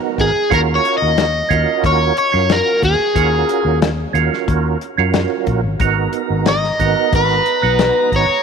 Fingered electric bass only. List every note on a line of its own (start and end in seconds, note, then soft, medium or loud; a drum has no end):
0.18 0.32 G#1 medium
0.51 0.78 D#2 medium
1.02 1.41 D#2 medium
1.51 1.64 D#2 medium
1.84 2.10 D#2 medium
2.34 2.60 F#2 medium
2.82 2.96 D#2 medium
3.16 3.42 D#2 medium
3.65 4.04 D#2 medium
4.14 4.28 D#2 medium
4.48 4.74 D#2 medium
4.98 5.25 F#2 medium
5.47 5.62 A#1 medium
5.64 5.78 G#1 medium
5.80 6.06 G#1 medium
6.30 6.70 G#1 medium
6.79 6.93 G#1 medium
7.12 7.39 G#1 medium
7.63 7.90 B1 medium
8.12 8.26 G#1 medium
8.29 muted fingered electric bass stroke soft